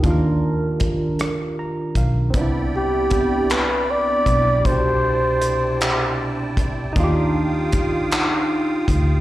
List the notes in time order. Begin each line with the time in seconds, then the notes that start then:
0.00 D#3 D4, kick, closed hi-hat
0.04 D#2 F4
0.10 A#4
0.80 kick, closed hi-hat
1.19 cross-stick, closed hi-hat
1.59 A#5
1.95 B1 F5, kick, closed hi-hat
2.30 B3 C4, kick, closed hi-hat
2.35 C2 D4 E4 D5 G5 B5
2.41 E4
2.75 G4
3.10 kick, closed hi-hat
3.50 B4, clap, closed hi-hat
3.91 D5
4.26 B1, kick, closed hi-hat
4.61 B2 C3
4.65 C2 D4 C5 A5, kick, closed hi-hat
4.71 G4
5.41 closed hi-hat
5.81 clap, closed hi-hat
6.57 D2, kick, closed hi-hat
6.93 D4 D#4 F4 F5 G5 D#6, kick, closed hi-hat
6.97 D#2 F4
7.04 G4
7.72 kick, closed hi-hat
8.11 clap, closed hi-hat
8.88 D2, kick, closed hi-hat